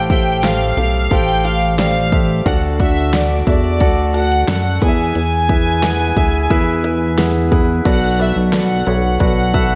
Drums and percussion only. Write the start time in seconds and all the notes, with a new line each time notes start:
0.10 kick, closed hi-hat
0.43 snare, clap, closed hi-hat
0.77 closed hi-hat
1.11 kick, closed hi-hat
1.45 closed hi-hat
1.62 closed hi-hat
1.79 snare, clap, closed hi-hat
2.12 kick, closed hi-hat
2.46 kick, closed hi-hat
2.80 kick, closed hi-hat
3.13 snare, clap, closed hi-hat
3.47 kick, closed hi-hat
3.80 kick, closed hi-hat
4.14 closed hi-hat
4.32 closed hi-hat
4.48 snare, clap, closed hi-hat
4.82 kick, closed hi-hat
5.15 closed hi-hat
5.49 kick, closed hi-hat
5.83 snare, clap, closed hi-hat
6.17 kick, closed hi-hat
6.50 kick, closed hi-hat
6.84 closed hi-hat
7.18 snare, clap, closed hi-hat
7.52 kick, closed hi-hat
7.85 kick, closed hi-hat, crash
8.20 closed hi-hat
8.53 snare, clap, closed hi-hat
8.86 closed hi-hat
9.20 kick, closed hi-hat
9.54 kick, closed hi-hat